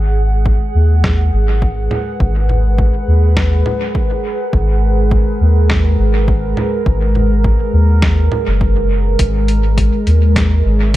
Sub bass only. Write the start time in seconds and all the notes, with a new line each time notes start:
Already playing: G#1
0.75 D#2
1.33 G#1
2.20 G#1
3.08 D#2
4.53 G#1
5.41 D#2
5.99 G#1
6.86 G#1
7.73 D#2
8.47 F#1
9.19 G#1
10.07 D#2
10.65 G#1